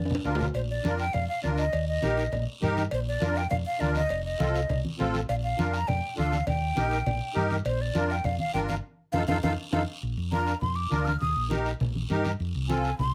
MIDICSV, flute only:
0, 0, Header, 1, 2, 480
1, 0, Start_track
1, 0, Key_signature, -2, "major"
1, 0, Tempo, 296296
1, 883, Time_signature, 4, 2, 24, 8
1, 21290, End_track
2, 0, Start_track
2, 0, Title_t, "Flute"
2, 0, Program_c, 0, 73
2, 0, Note_on_c, 0, 74, 84
2, 338, Note_off_c, 0, 74, 0
2, 897, Note_on_c, 0, 72, 85
2, 994, Note_off_c, 0, 72, 0
2, 1140, Note_on_c, 0, 74, 84
2, 1579, Note_off_c, 0, 74, 0
2, 1601, Note_on_c, 0, 79, 98
2, 1834, Note_on_c, 0, 77, 95
2, 1858, Note_off_c, 0, 79, 0
2, 2066, Note_off_c, 0, 77, 0
2, 2076, Note_on_c, 0, 77, 94
2, 2303, Note_off_c, 0, 77, 0
2, 2314, Note_on_c, 0, 74, 84
2, 2411, Note_off_c, 0, 74, 0
2, 2544, Note_on_c, 0, 75, 92
2, 3000, Note_off_c, 0, 75, 0
2, 3042, Note_on_c, 0, 75, 77
2, 3939, Note_off_c, 0, 75, 0
2, 4755, Note_on_c, 0, 72, 84
2, 4852, Note_off_c, 0, 72, 0
2, 4991, Note_on_c, 0, 74, 86
2, 5463, Note_on_c, 0, 79, 97
2, 5487, Note_off_c, 0, 74, 0
2, 5658, Note_off_c, 0, 79, 0
2, 5668, Note_on_c, 0, 77, 99
2, 5765, Note_off_c, 0, 77, 0
2, 5926, Note_on_c, 0, 77, 97
2, 6157, Note_on_c, 0, 74, 90
2, 6182, Note_off_c, 0, 77, 0
2, 6386, Note_off_c, 0, 74, 0
2, 6396, Note_on_c, 0, 75, 94
2, 6847, Note_off_c, 0, 75, 0
2, 6883, Note_on_c, 0, 75, 78
2, 7779, Note_off_c, 0, 75, 0
2, 8568, Note_on_c, 0, 77, 93
2, 8666, Note_off_c, 0, 77, 0
2, 8796, Note_on_c, 0, 77, 89
2, 9293, Note_on_c, 0, 82, 100
2, 9317, Note_off_c, 0, 77, 0
2, 9520, Note_on_c, 0, 79, 93
2, 9544, Note_off_c, 0, 82, 0
2, 10003, Note_off_c, 0, 79, 0
2, 10010, Note_on_c, 0, 77, 96
2, 10454, Note_off_c, 0, 77, 0
2, 10499, Note_on_c, 0, 79, 100
2, 12108, Note_off_c, 0, 79, 0
2, 12415, Note_on_c, 0, 72, 86
2, 12656, Note_on_c, 0, 74, 83
2, 12680, Note_off_c, 0, 72, 0
2, 13140, Note_on_c, 0, 79, 91
2, 13165, Note_off_c, 0, 74, 0
2, 13359, Note_on_c, 0, 77, 86
2, 13383, Note_off_c, 0, 79, 0
2, 13584, Note_off_c, 0, 77, 0
2, 13594, Note_on_c, 0, 77, 89
2, 13822, Note_off_c, 0, 77, 0
2, 13830, Note_on_c, 0, 79, 86
2, 13927, Note_off_c, 0, 79, 0
2, 14069, Note_on_c, 0, 77, 82
2, 14166, Note_off_c, 0, 77, 0
2, 14776, Note_on_c, 0, 77, 96
2, 14942, Note_off_c, 0, 77, 0
2, 15017, Note_on_c, 0, 77, 95
2, 15182, Note_off_c, 0, 77, 0
2, 15272, Note_on_c, 0, 77, 95
2, 15431, Note_off_c, 0, 77, 0
2, 15762, Note_on_c, 0, 77, 86
2, 15917, Note_off_c, 0, 77, 0
2, 16718, Note_on_c, 0, 82, 94
2, 17180, Note_off_c, 0, 82, 0
2, 17189, Note_on_c, 0, 84, 87
2, 17423, Note_on_c, 0, 86, 78
2, 17447, Note_off_c, 0, 84, 0
2, 17902, Note_on_c, 0, 89, 85
2, 17926, Note_off_c, 0, 86, 0
2, 18138, Note_off_c, 0, 89, 0
2, 18148, Note_on_c, 0, 87, 88
2, 18622, Note_off_c, 0, 87, 0
2, 20554, Note_on_c, 0, 80, 89
2, 21025, Note_off_c, 0, 80, 0
2, 21040, Note_on_c, 0, 84, 83
2, 21290, Note_off_c, 0, 84, 0
2, 21290, End_track
0, 0, End_of_file